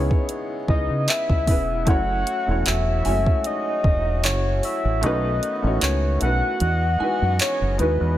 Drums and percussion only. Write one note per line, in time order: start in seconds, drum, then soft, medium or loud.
0.11 kick medium
0.29 closed hi-hat medium
0.68 kick medium
1.08 clap loud
1.08 closed hi-hat medium
1.29 kick medium
1.47 kick medium
1.47 open hi-hat medium
1.87 kick loud
1.87 closed hi-hat medium
2.27 closed hi-hat medium
2.66 clap loud
2.66 closed hi-hat medium
3.05 open hi-hat medium
3.26 kick medium
3.44 closed hi-hat medium
3.84 kick medium
4.24 clap loud
4.24 closed hi-hat medium
4.63 open hi-hat medium
5.03 closed hi-hat medium
5.43 closed hi-hat medium
5.81 clap loud
5.81 closed hi-hat medium
6.21 closed hi-hat medium
6.60 closed hi-hat medium
7.39 clap loud
7.39 closed hi-hat medium
7.79 closed hi-hat medium